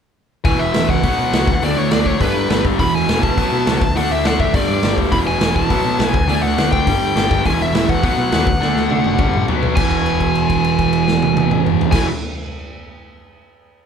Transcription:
0.44 E1 E2 B2 E3 G#5, kick, open hi-hat
0.59 E1 E5
0.73 E1 E2 B2 E3, snare, open hi-hat
0.89 C#2 F#5, kick
1.04 B1 B2 F#3 B3, kick, open hi-hat
1.19 B2
1.33 C#2 B2 F#3 B3, snare, open hi-hat
1.47 D2, kick
1.62 D2 D3 A3 D4 D5, open hi-hat
1.77 D2 C#5
1.91 D2 D3 A3 D4 D5, snare, open hi-hat
2.06 D2 C#5, kick
2.20 G1 G2 D3 G3 B4, kick, open hi-hat
2.34 G2
2.49 G1 G2 D3 G3, snare, open hi-hat
2.65 G1, kick
2.77 E1 E2 B2 E3 B5, kick, open hi-hat
2.93 E1 G#5
3.08 E1 E2 B2 E3, snare, open hi-hat
3.23 E1 A5, kick
3.37 B1 B2 F#3 B3, kick, open hi-hat
3.52 B2
3.66 C#2 B2 F#3 B3, snare, open hi-hat
3.81 D2, kick
3.96 D2 D3 A3 D4 F#5, open hi-hat
4.11 D2 E5
4.24 D2 D3 A3 D4 F#5, snare, open hi-hat
4.40 F#1 E5, kick
4.53 G1 G2 D3 G3 D5, kick, open hi-hat
4.69 G2
4.83 G1 G2 D3 G3, snare, open hi-hat
4.98 D2, kick
5.12 E1 E2 B2 E3 B5, kick, open hi-hat
5.27 E1 G#5
5.41 E1 E2 B2 E3, snare, open hi-hat
5.56 E1 A5, kick
5.70 B1 B2 F#3 B3, kick, open hi-hat
5.84 B2
5.99 B1 B2 F#3 B3, snare, open hi-hat
6.08 G#5
6.14 D2, kick
6.28 D2 D3 A3 D4 G#5, open hi-hat
6.42 D2 F#5
6.58 D2 D3 A3 D4, snare, open hi-hat
6.72 D2 G5, kick
6.87 G1 G2 D3 G3, kick, open hi-hat
7.02 G2
7.16 G1 G2 D3 G3, snare, open hi-hat
7.31 G1, kick
7.45 E1 E2 B2 E3 G#5, kick, open hi-hat
7.60 E1 E5
7.73 E1 E2 B2 E3, snare, open hi-hat
7.89 E1 F#5, kick
8.02 B1 B2 F#3 B3 F#5, kick, open hi-hat
8.17 B2
8.31 D#2 B2 F#3 B3, snare, open hi-hat
8.47 D2, kick
8.60 D2 D3 A3 D4, snare
8.75 D2, snare
8.89 D2 D3 A3 D4, high tom
9.04 F#1, high tom
9.18 G1 G2 D3 G3, kick, mid tom
9.33 A1, mid tom
9.47 B1 B2 F#3 B3, floor tom
9.63 B1, floor tom
9.76 E1 E2 B2 G#5, kick, crash
9.80 E3
9.91 kick, crash
10.06 crash
10.20 kick, crash
10.35 crash
10.50 kick, crash
10.64 crash
10.79 kick, crash
10.93 crash
11.08 snare
11.22 high tom
11.37 high tom
11.51 mid tom
11.66 mid tom
11.81 floor tom
11.92 E1 E2 B2 G#5, kick, snare, crash
11.96 E3

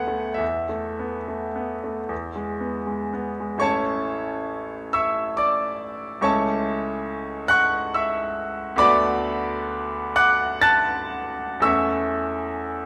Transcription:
Already playing: D2 A3 B3 F#5 G#5
0.08 A3
0.34 E2 E5
0.69 A3
0.99 B3
1.28 A3
1.56 B3
1.84 A3
2.09 E2
2.36 G#3
2.60 B3
2.87 G#3
3.13 B3
3.40 G#3
3.58 A1 A3 C#4 C#5 A5 C#6
3.63 E4
4.93 E5 C#6 E6
5.37 D5 D6
6.21 C#2 A3 C#4 E4 C#5 A5 C#6
7.48 F#5 C#6 F#6
7.94 E5 C#6 E6
8.76 D2 A3 B3 D5 B5 D6
8.80 F#4
10.16 F#5 D6 F#6
10.62 A5 F#6 A6
11.60 E2 A3 C#4 E4 E5 C#6 E6

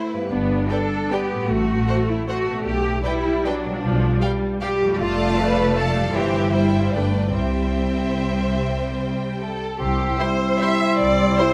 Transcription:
Already playing: D3 A3 E4 A4 C5 D5
0.11 G2 B4
0.18 B3
0.22 G4
0.27 B3 D4 D5
0.31 G1
0.70 D4 A4 B4 D5 G5
1.11 B3 G4 B4 D5 G5
1.32 A2
1.37 C4
1.41 F#4
1.46 A1 C5
1.50 A3 F#4
1.88 C5 F#5
2.09 E4
2.27 A3 F#4 C5 F#5
2.48 B2
2.52 B3
2.57 D4
2.61 D5
2.66 B1 G4
3.04 G3 E4 B4 D5 G5
3.45 F#3 D4 B4 D5 G5
3.65 B2
3.70 G3
3.75 F4
3.79 D5
3.84 B1 F3
4.21 G3 D5 F5 G5
4.61 G3 G4 D5 F5 G5
4.82 F2
4.86 A3
4.91 F4 G4
4.95 A3 D5 A5
4.99 F1 F4 D5 F5
5.37 B4
5.76 A4 D5 F5 A5
5.96 G2
6.01 G3
6.05 E4
6.10 C5 G5
6.14 G1 E3 G4 C5 E5
6.51 G3 E4 C5 E5 G5
6.76 G2
6.80 G3
6.85 D4
6.92 G1 A3 D4 B4 D5 G5
7.16 C3
7.20 G3
7.25 E4
7.30 C2 C4 C5 E5 G5
7.34 G3
9.41 A4
9.79 C2 C3 C4 E4 G4 C6 E6
9.90 C4
10.01 G3
10.10 E4
10.19 G3 E4 C5 C6
10.31 G4
10.42 E5
10.52 C6
10.58 G3 E4 C5 E5 C6
10.63 E5
10.72 G4
10.82 C5
10.92 E4
10.99 C2 C3 D5
11.11 C4
11.21 G3
11.30 E4
11.38 G3 E4 C5 C6
11.50 G4

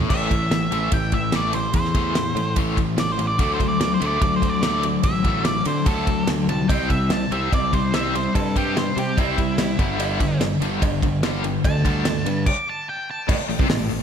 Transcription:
0.10 A1 A2 E3 A3 E5, kick, crash
0.30 A2 E3, kick, ride
0.51 A2 E3, snare, ride
0.71 A1 A2 E3 A3, ride
0.92 A1 A2 E3 G5, kick, ride
1.12 A2 E3 E5, kick, ride
1.32 A2 E3 A3 D5, snare, ride
1.53 A2 E3 C5, ride
1.74 E2 A2 E3 C5, kick, ride
1.85 snare
1.95 A2 E3 A3, kick, ride
2.15 A2 E3, snare, ride
2.35 A2 E3, ride
2.56 A1 A2 E3 A3, kick, ride
2.77 A2 E3, kick, ride
2.97 A2 E3 D5, snare, ride
3.12 C5
3.19 A2 E3, ride
3.27 D5
3.38 D2 D3 F#3 A3 D5, kick, ride
3.54 C5
3.60 D3 F#3, kick, ride
3.68 D5
3.80 D3 F#3 D5, snare, ride
3.94 C5
4.00 D2 D3 F#3 A3, ride
4.06 D5
4.21 D2 D3 F#3 D5, kick, ride
4.36 C5
4.42 D3 F#3, kick, ride
4.49 D5
4.62 D3 F#3 A3 D5, snare, ride
4.83 D3 F#3, ride
5.03 A1 D3 F#3 E5, kick, ride
5.24 D3 F#3 A3, kick, ride
5.45 D3 F#3 D5, snare, ride
5.65 D3 F#3 C5, ride
5.86 D2 D3 F#3 A3 A4, kick, ride
6.07 D3 F#3, kick, ride
6.27 D2 D3 F#3, snare, ride
6.48 C2 D3 F#3 A5, ride
6.69 C2 C3 G3 C4 G5, kick, ride, cowbell
6.90 C3 G3 E5, kick, ride
7.10 C3 G3 A5, snare, ride, cowbell
7.31 C2 C3 G3 C4 E5, ride
7.53 C2 C3 G3 D5, kick, ride, cowbell
7.73 C3 G3 C5, kick, ride
7.94 C3 G3 C4 E5, snare, ride, cowbell
8.15 C3 G3 C5, ride
8.35 G2 C3 G3 A4, kick, ride, cowbell
8.56 C3 G3 C4 G4, kick, ride
8.77 C3 G3 C5, snare, ride, cowbell
8.97 C3 G3 G4, ride
9.17 C2 C3 G3 C4 E4, kick, ride, cowbell
9.38 C3 G3, kick, ride
9.58 C3 G3, snare, ride, cowbell
9.79 G1 G2 D3 G3, kick, ride
9.99 G2 D3 G3, ride, cowbell
10.20 G2 D3, kick, ride
10.41 G2 D3, snare, ride, cowbell
10.61 G1 G2 D3 G3, ride
10.82 G1 G2 D3, kick, ride, cowbell
11.02 G2 D3, kick, ride
11.23 G2 D3 G3, snare, ride, cowbell
11.44 G2 D3, ride
11.64 D2 G2 D3 A5, kick, ride, cowbell
11.84 G2 D3 G3, kick, ride
12.05 G2 D3, snare, ride, cowbell
12.25 G2 D3, ride
12.46 D6, kick, crash
12.69 A5
12.89 G5
13.11 A5
13.28 A1 A2, kick, crash, cowbell
13.38 muted fingered electric bass stroke, muted overdriven electric guitar stroke, muted distorted electric guitar stroke, snare
13.49 A1 A2, open hi-hat
13.59 C2 C3, kick
13.70 A1 A2, snare, open hi-hat, cowbell
13.80 A1 A2
13.89 A1 A2, open hi-hat
13.99 A2

